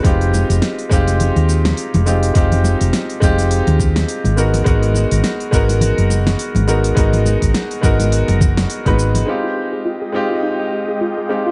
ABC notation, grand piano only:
X:1
M:4/4
L:1/16
Q:"Swing 16ths" 1/4=104
K:Ablyd
V:1 name="Grand piano"
[A,CEFG]6 [A,CEFG]8 [A,CEFG]2 | [A,CEFG]6 [A,CEFG]8 [A,_CE_GB]2 | [A,_CE_GB]6 [A,CEGB]8 [A,CEGB]2 | [A,_CE_GB]6 [A,CEGB]6- [A,CEGB] [A,CEG_c] z2 |
[A,CEFG]6 [A,CEFG]8 [A,CEFG]2 |]